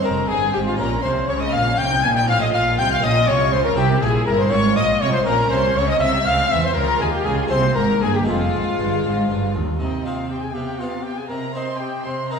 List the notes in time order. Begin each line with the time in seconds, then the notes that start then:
0.01 G#3 C4 F4 A#4
0.05 F1 F2 C4 A#5
0.28 G1 G2 G#4 G#5
0.53 G#1 G#2 G4 G5
0.66 F4 F5
0.77 A#1 A#2 C#4 F4 A#4 A#5
1.02 C2 C3 C5 C6
1.28 C#2 C#3 C#5 C#6
1.40 D#5 D#6
1.52 A#1 A#2 C#4 F5 F6
1.78 C2 C3 G5 G6
1.91 D#4
2.02 A#1 A#2 G#5 G#6
2.15 G5 G6
2.26 A1 A2 C4 F4 F5 F6
2.41 D#5 D#6
2.53 A#1 A#2 F5 F6
2.77 C2 C3 G5 G6
2.91 F5 F6
3.00 A#1 A#2 A#3 C#4 F4 D#5
3.04 A#2 D#5 D#6
3.27 C2 C3 C#5 C#6
3.52 C#2 C#3 C5 C6
3.64 A#4 A#5
3.75 C2 C3 C4 E4 G4 G5
4.01 A#1 A#2 G#4 G#5
4.26 G1 G2 A#4 A#5
4.39 C5 C6
4.49 G#1 G#2 C4 F4 C#5 C#6
4.76 A#1 A#2 D#5 D#6
5.01 C2 C3 C#5 C#6
5.13 C5 C6
5.23 A#1 A#2 A#3 C#4 F4 A#4 A#5
5.28 A#2
5.50 C2 C3 C5 C6
5.76 C#2 C#3 C#5 C#6
5.88 D#5 D#6
5.99 C2 C3 C4 E4 E5
6.03 E6
6.25 C#2 C#3 F5 F6
6.50 E2 E3 E5 E6
6.63 C5 C6
6.74 C#2 C#3 F4 A#4 A#5
6.99 D#2 D#3 G#4 G#5
7.11 G4 G5
7.25 C#2 C#3 G#4 G#5
7.47 A#3 E4 G4 C5
7.51 C2 C3 A#3 C6
7.75 G#1 G#2 A#4 A#5
8.02 G1 G2 G#4 G#5
8.14 G4 G5
8.24 G#3 C4 F4 F5
8.28 F1 F2 F4
8.54 G#1 G#2
8.79 G1 G2
9.04 G#1 G#2
9.29 G1 G2
9.55 D#2
9.80 C3 C4 D#4 D#5 G5
10.04 C4 D#4 F4 F5 G5
10.29 C4 G4 G5
10.42 G#4 G#5
10.53 C3 B3 G4 F5 G5
10.79 B3 F4 F5
11.03 B3 G4 F5 G5
11.17 G#4 G#5
11.28 C3 C4 A#4 D#5 A#5
11.54 C4 D#4 C5 D#5 C6
11.80 C4 G4 D#5 G5
12.05 C3 C4 C5 D#5 C6
12.29 C4 D#4 A#4 D#5 A#5